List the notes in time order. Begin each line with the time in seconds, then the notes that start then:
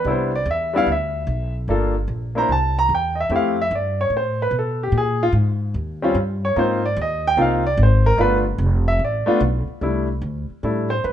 0.04 C2 G3 B3 D4 E4
0.10 C5
0.35 D5
0.46 E2
0.51 E5
0.74 G3 B3 D4 E4 F5
0.86 D2
0.92 E5
1.27 B1
1.68 G1 A#3 D4 F4 A4
2.08 A#1
2.35 A#3 D4 E4 C5 A#5
2.49 C2 A5
2.79 A#5
2.89 E2
2.95 G5
3.15 D#5
3.20 E5
3.29 F2 A3 C4 E4 G4
3.36 F5
3.62 E5
3.71 G2
3.75 D5
4.01 C#5
4.10 A2
4.17 C5
4.42 B4
4.51 B2
4.59 A4
4.83 G4
4.92 A#2
4.98 G#4
5.23 F4
5.32 G#2
5.74 D#2
6.02 G3 C4 C#4 F4
6.14 G2
6.45 C#5
6.56 G#2 A#3 C4 D#4 F4 C5
6.86 D5
6.96 D#2
7.01 D#5
7.27 G5
7.37 C2 A#3 C4 D#4 F4
7.42 F5
7.67 D5
7.77 G#1
7.83 C5
8.06 A#4
8.17 G1 A3 B3 D4 F4 B4
8.58 F1
8.88 E5
8.99 A1
9.04 D5
9.26 A3 B3 D4 F4, muted upright bass stroke
9.40 B1
9.68 muted upright bass stroke
9.81 C2 G3 A3 D4 E4
10.22 D2
10.50 muted upright bass stroke
10.63 A2 G3 A3 D4 E4 A4
10.90 C5
11.04 G2 B4